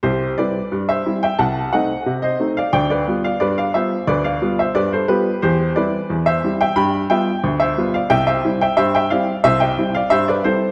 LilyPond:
<<
  \new Staff \with { instrumentName = "Upright piano" } { \time 2/4 \key c \major \tempo 4 = 89 <g' c''>8 <b' d''>8. <c'' e''>8 <e'' g''>16 | <ges'' a''>8 <ees'' ges''>8. <c'' ees''>8 <d'' f''>16 | <d'' g''>16 <b' d''>8 <d'' f''>16 <b' d''>16 <d'' f''>16 <c'' e''>8 | <b' d''>16 <d'' f''>8 <c'' e''>16 <b' d''>16 <a' c''>16 <g' b'>8 |
<g' c''>8 <b' d''>8. <c'' e''>8 <e'' g''>16 | <g'' b''>8 <e'' g''>8. <c'' e''>8 <d'' f''>16 | <e'' g''>16 <c'' e''>8 <e'' g''>16 <c'' e''>16 <e'' g''>16 <d'' f''>8 | <c'' e''>16 <e'' g''>8 <d'' f''>16 <c'' e''>16 <b' d''>16 <a' c''>8 | }
  \new Staff \with { instrumentName = "Upright piano" } { \time 2/4 \key c \major c,8 <g c' e'>8 g,8 <g c' e'>8 | c,8 <a c' ees'>8 c8 <a c' ees'>8 | d,8 <g b f'>8 g,8 <g b f'>8 | d,8 <g b f'>8 g,8 <g b f'>8 |
e,8 <g c' e'>8 e,8 <g c' e'>8 | g,8 <g b f'>8 d,8 <g b f'>8 | c,8 <g c' e'>8 g,8 <g c' e'>8 | c,8 <g c' e'>8 g,8 <g c' e'>8 | }
>>